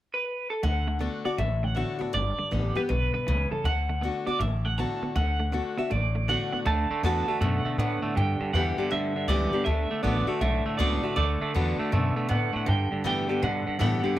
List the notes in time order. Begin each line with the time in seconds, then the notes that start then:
0.14 B4
0.50 A4
0.63 D2 D3 A3 F#5
0.88 D3 A3
0.99 D3 A3 B3 D4 F#4
1.25 D3 B3 D4 F#4 D5, muted upright bass stroke
1.38 A1 A2 D3 A3 E5
1.63 D3 A3 F#5
1.75 D3 A3 B3 D4 F#4 E5
1.99 D3 B3 D4 F#4, muted upright bass stroke
2.13 G1 G2 D3 D5
2.39 G2 D3, muted upright bass stroke
2.51 A1 G2 D3 E3 G3 B3 G4
2.75 G2 E3 B3 G4 B4, muted upright bass stroke
2.89 B1 G2 B2 D3 B4
3.14 G2 D3 B4, muted upright bass stroke
3.27 C#2 G2 C#3 E3
3.51 G2 E3 A4, muted upright bass stroke
3.64 D2 D3 A3 F#5
3.89 D3 A3
4.02 D3 A3 B3 D4 F#4
4.26 D3 B3 D4 F#4 D5, muted upright bass stroke
4.39 A1 A2 D3 A3 E5
4.65 D3 A3 F#5
4.78 D3 A3 B3 D4 F#4 A5
5.02 D3 B3, muted upright bass stroke
5.16 D2 D3 A3 F#5
5.39 D3 A3
5.52 D3 A3 B3 D4 F#4
5.78 D3 B3 D4 F#4 E5, muted upright bass stroke
5.90 A1 A2 D3 A3 D5
6.15 D3 A3
6.28 D3 A3 B3 D4 F#4 F#5
6.52 D3 B3 F#5, muted upright bass stroke
6.66 D2 D3 A3 A5
6.90 D3 A3, muted upright bass stroke
7.03 E2 D3 A3 B3 D4 F#4 A5
7.28 D3 A3 D4 F#4
7.41 F#2 B2 D3 A3 F#5
7.65 D3 A3, muted upright bass stroke
7.78 A2 D3 B3 F#5
8.02 D3 A3, muted upright bass stroke
8.15 G2 D3 G5
8.40 G2 D3, muted upright bass stroke
8.53 E2 G2 D3 E3 G3 B3 G4 F#5
8.78 G2 D3 B3 G4, muted upright bass stroke
8.91 D2 G2 D3 E5
9.15 G2 D3, muted upright bass stroke
9.28 C#2 G2 D3 E3 G3 B3 G4 D5
9.52 G2 D3 B3 G4, muted upright bass stroke
9.65 D2 D3 A3 E5
9.90 D3 A3, muted upright bass stroke
10.03 A1 D3 A3 B3 D4 F#4 D5
10.27 D3 A3 D4 F#4, muted upright bass stroke
10.41 B1 A2 D3 A3 E5
10.66 D3 A3, muted upright bass stroke
10.77 C#2 D3 A3 B3 D4 F#4 D5
11.03 D3 A3 D4 F#4, muted upright bass stroke
11.16 D2 D3 A3 D5
11.41 D3 A3, muted upright bass stroke
11.54 E2 D3 A3 B3 D4 F#4
11.79 D3 A3, muted upright bass stroke
11.92 F#2 B2 D3 A3
12.16 D3 A3, muted upright bass stroke
12.29 A2 D3 B3 F#5
12.53 D3 A3 F#5, muted upright bass stroke
12.66 G2 D3 G5
12.91 G2 D3, muted upright bass stroke
13.04 G2 A2 D3 E3 G3 B3 G4 G5
13.29 G2 D3 B3 G4, muted upright bass stroke
13.42 G2 B2 D3 F#5
13.66 G2 D3, muted upright bass stroke
13.79 G2 A2 D3 E3 G3 B3 G4 F#5
14.03 G2 D3 B3 G4, muted upright bass stroke